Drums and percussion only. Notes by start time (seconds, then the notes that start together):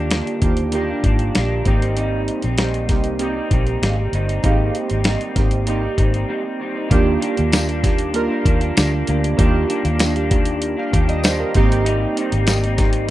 0.11 snare, closed hi-hat
0.27 closed hi-hat
0.42 kick, closed hi-hat
0.57 closed hi-hat
0.72 closed hi-hat
1.04 kick, closed hi-hat
1.19 closed hi-hat
1.35 snare, closed hi-hat
1.65 kick, closed hi-hat
1.82 closed hi-hat
1.97 closed hi-hat
2.28 closed hi-hat
2.42 closed hi-hat
2.58 snare, closed hi-hat
2.74 closed hi-hat
2.89 kick, snare, closed hi-hat
3.04 closed hi-hat
3.19 closed hi-hat
3.51 kick, closed hi-hat
3.67 closed hi-hat
3.83 snare, closed hi-hat
4.13 closed hi-hat
4.29 closed hi-hat
4.44 kick, closed hi-hat
4.75 closed hi-hat
4.90 closed hi-hat
5.04 snare, closed hi-hat
5.21 closed hi-hat
5.36 kick, snare, closed hi-hat
5.51 closed hi-hat
5.67 closed hi-hat
5.98 kick, closed hi-hat
6.14 closed hi-hat
6.91 kick, closed hi-hat
7.22 closed hi-hat
7.37 closed hi-hat
7.52 snare, closed hi-hat, tambourine
7.69 closed hi-hat
7.84 kick, snare, closed hi-hat
7.99 closed hi-hat
8.14 closed hi-hat
8.46 kick, closed hi-hat
8.61 closed hi-hat
8.77 snare, closed hi-hat, tambourine
9.07 closed hi-hat
9.24 closed hi-hat
9.39 kick, closed hi-hat
9.70 closed hi-hat
9.85 closed hi-hat
9.99 snare, closed hi-hat, tambourine
10.16 closed hi-hat
10.31 kick, closed hi-hat
10.46 closed hi-hat
10.62 closed hi-hat
10.93 kick, closed hi-hat
11.09 closed hi-hat
11.24 snare, closed hi-hat, tambourine
11.54 kick, closed hi-hat
11.72 closed hi-hat
11.86 closed hi-hat
12.17 closed hi-hat
12.32 closed hi-hat
12.47 snare, closed hi-hat, tambourine
12.64 closed hi-hat
12.78 kick, snare, closed hi-hat
12.93 closed hi-hat